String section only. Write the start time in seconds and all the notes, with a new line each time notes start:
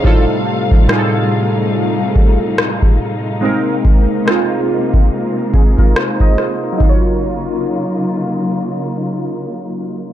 Already playing: F5
0.05 C3 G3 A3 D#4
3.42 C3 G#3 A#3
6.81 C#3 F#3 A#3 D#4 F4